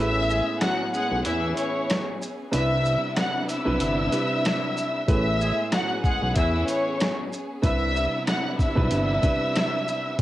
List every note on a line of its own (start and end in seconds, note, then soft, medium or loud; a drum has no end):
0.00 0.42 A1 loud
0.00 2.18 A2 medium
0.00 2.18 A3 medium
0.00 2.50 B3 medium
0.00 2.18 C#4 medium
0.00 2.50 C#4 medium
0.00 2.18 G#4 medium
0.00 2.50 G#4 medium
0.00 2.18 B4 loud
0.00 0.57 E5 loud
0.00 0.58 E6 medium
0.30 0.55 G#3 medium
0.30 0.55 G#4 medium
0.30 shaker medium
0.61 0.87 F#3 loud
0.61 0.87 F#4 loud
0.61 0.90 F#5 medium
0.61 0.91 F#6 medium
0.61 cross-stick loud
0.61 snare loud
0.61 closed hi-hat medium
0.94 1.19 G#3 medium
0.94 1.19 G#4 loud
0.94 1.22 F#5 medium
0.94 1.23 F#6 medium
0.94 shaker medium
1.12 1.24 B1 medium
1.25 1.54 E2 loud
1.25 2.02 E3 loud
1.25 2.02 E4 loud
1.25 1.54 E5 medium
1.25 1.55 E6 medium
1.25 closed hi-hat loud
1.56 2.03 C#5 medium
1.56 2.04 C#6 medium
1.56 closed hi-hat medium
1.56 shaker medium
1.90 cross-stick loud
1.90 snare loud
1.90 closed hi-hat medium
2.22 shaker medium
2.52 2.97 C2 loud
2.52 3.56 C3 medium
2.52 5.06 C3 medium
2.52 3.56 G3 medium
2.52 5.06 B3 medium
2.52 3.56 D4 medium
2.52 5.06 D4 medium
2.52 3.56 E4 medium
2.52 5.06 E4 medium
2.52 3.56 B4 loud
2.52 3.13 E5 loud
2.52 3.14 E6 medium
2.52 closed hi-hat loud
2.85 shaker medium
3.17 3.46 F#5 medium
3.17 3.46 F#6 medium
3.17 cross-stick loud
3.17 snare loud
3.17 closed hi-hat medium
3.49 5.05 E5 medium
3.49 5.05 E6 medium
3.49 closed hi-hat medium
3.49 shaker medium
3.65 3.79 B1 loud
3.65 4.08 C3 medium
3.65 4.09 G3 medium
3.65 4.09 D4 medium
3.65 4.09 E4 medium
3.65 4.09 B4 loud
3.80 4.09 G1 loud
3.80 closed hi-hat loud
4.12 5.01 C3 medium
4.12 5.01 G3 medium
4.12 5.01 D4 medium
4.12 5.01 E4 medium
4.12 5.01 B4 loud
4.12 closed hi-hat medium
4.12 shaker medium
4.45 cross-stick medium
4.45 snare loud
4.45 closed hi-hat medium
4.77 shaker medium
5.08 5.52 A1 loud
5.08 7.28 A2 medium
5.08 7.29 A3 medium
5.08 7.61 B3 medium
5.08 7.29 C#4 medium
5.08 7.61 C#4 medium
5.08 7.29 G#4 medium
5.08 7.61 G#4 medium
5.08 7.29 B4 loud
5.08 5.68 E5 loud
5.08 5.69 E6 medium
5.08 kick loud
5.08 closed hi-hat loud
5.40 5.66 G#3 medium
5.40 5.66 G#4 loud
5.40 shaker medium
5.72 5.97 F#3 medium
5.72 5.97 F#4 loud
5.72 6.01 F#5 medium
5.72 6.01 F#6 medium
5.72 cross-stick medium
5.72 snare loud
5.72 closed hi-hat medium
6.04 6.29 G#3 medium
6.04 6.29 G#4 medium
6.04 6.33 F#5 medium
6.04 6.33 F#6 medium
6.04 kick medium
6.04 shaker medium
6.22 6.35 B1 medium
6.36 6.65 E2 loud
6.36 7.14 E3 loud
6.36 7.13 E4 loud
6.36 6.65 E5 medium
6.36 6.65 E6 medium
6.36 kick medium
6.36 closed hi-hat loud
6.68 7.15 C#5 medium
6.68 7.15 C#6 medium
6.68 closed hi-hat medium
6.68 shaker medium
7.00 cross-stick loud
7.00 snare loud
7.00 closed hi-hat medium
7.33 shaker medium
7.62 8.08 C2 loud
7.62 8.66 C3 medium
7.62 10.16 C3 medium
7.62 8.66 G3 medium
7.62 10.16 B3 medium
7.62 8.67 D4 medium
7.62 10.16 D4 medium
7.62 8.67 E4 medium
7.62 10.16 E4 medium
7.62 8.67 B4 loud
7.62 8.23 E5 loud
7.62 8.24 E6 medium
7.62 kick loud
7.62 closed hi-hat loud
7.96 shaker medium
8.27 8.56 F#5 medium
8.27 8.56 F#6 medium
8.27 cross-stick medium
8.27 snare loud
8.27 closed hi-hat medium
8.59 10.15 E5 medium
8.59 10.15 E6 medium
8.59 kick medium
8.59 shaker medium
8.76 8.90 B1 loud
8.76 9.19 C3 medium
8.76 9.19 G3 medium
8.76 9.19 D4 medium
8.76 9.19 E4 medium
8.76 9.19 B4 loud
8.76 kick medium
8.91 9.20 G1 loud
8.91 closed hi-hat loud
9.22 10.12 C3 medium
9.22 10.12 G3 medium
9.22 10.12 D4 medium
9.22 10.12 E4 medium
9.22 10.12 B4 loud
9.22 kick medium
9.22 closed hi-hat medium
9.22 shaker medium
9.56 cross-stick medium
9.56 snare loud
9.56 closed hi-hat medium
9.88 shaker medium
10.19 closed hi-hat medium